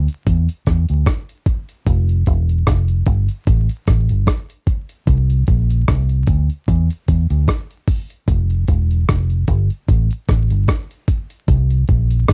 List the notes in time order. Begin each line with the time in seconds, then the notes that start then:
0.08 closed hi-hat
0.27 E2, kick, closed hi-hat
0.49 closed hi-hat
0.66 E2, kick, cross-stick, closed hi-hat
0.89 D2, closed hi-hat
1.06 kick, cross-stick, closed hi-hat
1.29 closed hi-hat
1.46 kick, closed hi-hat
1.69 closed hi-hat
1.86 F1, kick, closed hi-hat
2.09 closed hi-hat
2.26 E1, kick, closed hi-hat
2.49 closed hi-hat
2.67 F1, kick, cross-stick, closed hi-hat
2.88 closed hi-hat
3.06 G1, kick, closed hi-hat
3.29 closed hi-hat
3.47 A1, kick, closed hi-hat
3.69 closed hi-hat
3.87 A1, kick, cross-stick, closed hi-hat
4.09 G1, closed hi-hat
4.27 kick, cross-stick, closed hi-hat
4.50 closed hi-hat
4.67 kick, closed hi-hat
4.89 closed hi-hat
5.07 C2, kick, closed hi-hat
5.30 closed hi-hat
5.47 A#1, kick, closed hi-hat
5.70 closed hi-hat
5.88 C2, kick, cross-stick, closed hi-hat
6.09 closed hi-hat
6.27 D2, kick, closed hi-hat
6.50 closed hi-hat
6.68 E2, kick, closed hi-hat
6.90 closed hi-hat
7.08 E2, kick, closed hi-hat
7.30 D2, closed hi-hat
7.48 kick, cross-stick, closed hi-hat
7.71 closed hi-hat
7.88 kick, open hi-hat
8.10 closed hi-hat
8.28 F1, kick, closed hi-hat
8.50 closed hi-hat
8.68 E1, kick, closed hi-hat
8.91 closed hi-hat
9.09 F1, kick, cross-stick, closed hi-hat
9.30 closed hi-hat
9.47 G1, kick, closed hi-hat
9.70 closed hi-hat
9.88 A1, kick, closed hi-hat
10.11 closed hi-hat
10.28 A1, kick, cross-stick, closed hi-hat
10.50 G1, closed hi-hat
10.68 kick, cross-stick, closed hi-hat
10.91 closed hi-hat
11.08 kick, closed hi-hat
11.30 closed hi-hat
11.48 C2, kick, closed hi-hat
11.70 closed hi-hat
11.88 A#1, kick, closed hi-hat
12.10 closed hi-hat
12.28 C2, kick, cross-stick, closed hi-hat